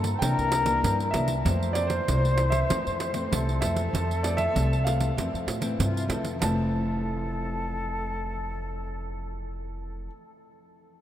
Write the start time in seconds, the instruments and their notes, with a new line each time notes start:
Already playing: upright bass G2, nylon-string guitar D3, flute A4
0.04 pandeiro
0.15 flute C5
0.19 upright bass C2, nylon-string guitar C3 E3 A#3, flute A#4, grand piano G5, pandeiro
0.23 nylon-string guitar D4
0.38 upright bass C2, pandeiro
0.52 pandeiro
0.65 nylon-string guitar E3 A#3 D4, pandeiro
0.83 upright bass G2, nylon-string guitar G2, pandeiro
1.00 pandeiro
1.11 upright bass C2, nylon-string guitar E3 A#3 D4, grand piano E5, pandeiro
1.28 pandeiro
1.45 nylon-string guitar F2 E3 A3 C4, upright bass F2, flute C5, pandeiro
1.63 pandeiro
1.73 nylon-string guitar E3 A3 C4, grand piano D5, pandeiro
1.87 grand piano C5, pandeiro
2.08 upright bass C2, nylon-string guitar C3 E3 A3 C4, pandeiro
2.25 pandeiro
2.38 pandeiro
2.50 grand piano E5, pandeiro
2.69 nylon-string guitar F2 E3 A3 C4, upright bass F2, pandeiro
2.86 upright bass F2, pandeiro
3.00 pandeiro
3.14 nylon-string guitar E3 A3 C4, pandeiro
3.32 upright bass C2, nylon-string guitar C3, flute A4, pandeiro
3.49 pandeiro
3.61 upright bass F2, nylon-string guitar E3 A3 C4, grand piano E5, pandeiro
3.76 pandeiro
3.93 upright bass F2, nylon-string guitar F2, pandeiro
4.11 pandeiro
4.23 nylon-string guitar E3 A3 C4, grand piano D5, pandeiro
4.37 grand piano E5, pandeiro
4.55 upright bass C2, nylon-string guitar C3 E3 A3 C4, pandeiro
4.73 pandeiro
4.84 nylon-string guitar E3 A3 C4, grand piano F5, pandeiro
5.00 pandeiro
5.17 upright bass F2, nylon-string guitar F2 E3 A3 C4, pandeiro
5.34 upright bass F2, pandeiro
5.47 upright bass A2, pandeiro
5.61 nylon-string guitar E3 A3 C4, pandeiro
5.79 upright bass G2, nylon-string guitar C3, flute F4, pandeiro
5.97 pandeiro
6.08 upright bass F2, nylon-string guitar E3 A3 C4, flute A4, pandeiro
6.25 pandeiro
6.39 upright bass F1, nylon-string guitar F2 E3, flute A4, grand piano A5, pandeiro
6.43 nylon-string guitar A3 C4